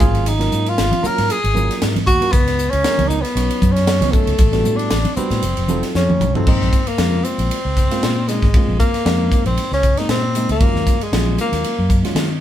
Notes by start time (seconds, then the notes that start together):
0.00 G#1 F#3 A#3 C#4 F4 G#4, kick, hi-hat pedal, low conga
0.15 ride
0.26 D#4, hi-hat pedal, ride
0.39 F#3 A#3 C#4 F4 A#4, snare, ride
0.52 G#2, hi-hat pedal
0.66 F4, ride
0.78 G#1, snare, hi-hat pedal, ride
0.91 ride, high conga
1.02 F#3 A#3 C#4 F4 A#4, muted fretless electric bass stroke, hi-hat pedal, low conga
1.07 A#4
1.18 G#2, snare, ride
1.30 G#4, hi-hat pedal, ride
1.44 G#1, ride
1.54 F#3 A#3 C#4 F4 A#4, hi-hat pedal, high conga
1.71 snare, ride
1.82 G#2, snare, hi-hat pedal, ride
1.96 ride, high conga
2.07 D#2 F#4, kick, hi-hat pedal, low conga
2.21 F#3 A#3 C#4 F4 A#4, muted fretless electric bass stroke, ride
2.32 C#2 B3, kick, hi-hat pedal, ride
2.47 snare, ride
2.59 hi-hat pedal
2.71 C#2 C#4, ride
2.84 F#3 B3 C#4 D#4 A#4, snare, hi-hat pedal, ride
2.98 C#2, ride, high conga
3.08 D#4, hi-hat pedal, low conga
3.22 B3, snare, ride
3.35 B1 F#3 B3 C#4 D#4 C#5, hi-hat pedal, ride
3.51 ride
3.62 F#2, kick, hi-hat pedal, high conga
3.73 C#4, ride
3.77 snare
3.87 snare, hi-hat pedal, ride
4.01 C#2 F#3 B3 C#4 D#4 C#5, snare, ride, high conga
4.12 A3, kick, hi-hat pedal, low conga
4.27 C#2, ride
4.38 A1, kick, hi-hat pedal, ride
4.52 G3 B3 D4 F#4 A4, snare, ride
4.65 A2, hi-hat pedal, high conga
4.77 D4, ride
4.90 A1, snare, hi-hat pedal, ride
5.05 ride, high conga
5.16 G3 B3 C4 D4 F#4 B4, muted fretless electric bass stroke, hi-hat pedal, low conga
5.30 A2, snare, ride, low conga
5.42 F1, hi-hat pedal, ride
5.57 F1, ride
5.68 F#3 C4 D#4 F4 A4, hi-hat pedal, high conga
5.83 snare, ride
5.95 F2 C#4, snare, hi-hat pedal
6.09 mid tom, high conga
6.21 C2, hi-hat pedal, mid tom, low conga
6.35 F#3 C4 D#4 F4 A4, muted fretless electric bass stroke, floor tom
6.47 A#1 C#3 G#3 A#3 C4 D#4, kick, crash
6.61 A#1, snare
6.73 kick, hi-hat pedal, ride
6.87 A#3, muted fretless electric bass stroke, ride
6.98 F2 C#3 G#3 A#3 C4 F4, snare, ride
7.25 C4, hi-hat pedal, ride
7.38 A#1, ride
7.51 ride
7.65 C#2
7.77 kick, hi-hat pedal, ride
7.91 C#3 G#3 A#3 C4 F4, snare, ride
8.03 A#2, snare, ride
8.28 C#3 G#3 A#3 C4 D#4, snare, hi-hat pedal, ride
8.42 G#1, kick, snare
8.54 C#3 G#3 A#3 C4 F4, kick, ride
8.68 A#1
8.80 A#3, kick, hi-hat pedal, ride
8.94 muted fretless electric bass stroke, snare, ride
9.05 F2 C#3 G#3 A#3 C4 D#4, snare, ride
9.32 kick, hi-hat pedal, ride
9.46 A#1 C4, ride
9.57 ride
9.71 C#2 C#4, snare
9.83 kick, hi-hat pedal, ride
9.97 C#3 G#3 A#3 C4 D#4, snare, ride
10.09 A#2 C4, snare, ride
10.35 C#3 G#3 A#3 C4 D#4, hi-hat pedal, ride
10.49 C#2 A#3, ride
10.61 D#2 D#3 F#3 G#3 C#4 F4, kick, ride
10.74 D#2, snare
10.87 kick, hi-hat pedal, ride
11.01 G#3, muted fretless electric bass stroke, ride
11.12 A#1 D#3 F#3 G#3 C#4 F4, snare, ride
11.38 A#3, hi-hat pedal, ride
11.52 D#2, snare, ride
11.64 ride
11.79 F#2
11.90 kick, hi-hat pedal, ride
12.04 D#3 F#3 G#3 C#4 F4, snare, ride
12.15 D#3, snare, ride